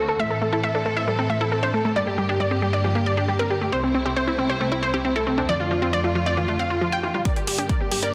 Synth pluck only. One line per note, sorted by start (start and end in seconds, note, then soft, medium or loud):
0.09 0.17 A4 medium
0.20 0.28 E5 medium
0.30 0.39 A4 medium
0.41 0.50 A4 medium
0.53 0.61 A4 medium
0.64 0.72 E5 medium
0.75 0.83 A4 medium
0.86 0.94 A4 medium
0.97 1.05 E5 medium
1.08 1.16 A4 medium
1.19 1.27 A4 medium
1.30 1.38 E5 medium
1.41 1.49 A4 medium
1.52 1.60 A4 medium
1.63 1.71 C5 medium
1.74 1.82 A4 medium
1.85 1.93 A4 medium
1.96 2.04 D5 medium
2.07 2.15 G4 medium
2.18 2.26 G4 medium
2.29 2.38 G4 medium
2.40 2.49 D5 medium
2.51 2.60 G4 medium
2.62 2.71 G4 medium
2.73 2.82 D5 medium
2.84 2.93 G4 medium
2.95 3.04 G4 medium
3.06 3.15 D5 medium
3.17 3.26 G4 medium
3.28 3.37 G4 medium
3.39 3.48 A#4 medium
3.50 3.59 G4 medium
3.61 3.70 G4 medium
3.72 3.81 C5 medium
3.83 3.92 C4 medium
3.94 4.03 C4 medium
4.05 4.14 C4 medium
4.16 4.25 C5 medium
4.27 4.36 C4 medium
4.38 4.47 C4 medium
4.49 4.58 C5 medium
4.61 4.69 C4 medium
4.72 4.80 C4 medium
4.83 4.91 C5 medium
4.94 5.02 C4 medium
5.05 5.13 C4 medium
5.16 5.24 A4 medium
5.27 5.35 C4 medium
5.38 5.46 C4 medium
5.49 5.57 D5 loud
5.60 5.68 F4 medium
5.71 5.79 F4 medium
5.82 5.91 F4 medium
5.93 6.02 D5 medium
6.04 6.13 F4 medium
6.15 6.24 F4 medium
6.26 6.35 D5 medium
6.37 6.46 F4 medium
6.48 6.57 F4 medium
6.59 6.68 F5 medium
6.70 6.79 F4 medium
6.81 6.90 F4 medium
6.92 7.01 G5 medium
7.03 7.12 F4 medium
7.14 7.23 F4 medium
7.25 7.34 A#4 medium
7.25 7.34 D5 loud
7.36 7.45 G4 medium
7.47 7.56 G4 medium
7.58 7.67 G4 medium
7.69 7.78 A#4 medium
7.69 7.78 D5 medium
7.80 7.89 G4 medium
7.91 8.00 G4 medium
8.02 8.11 A#4 medium
8.02 8.11 D5 medium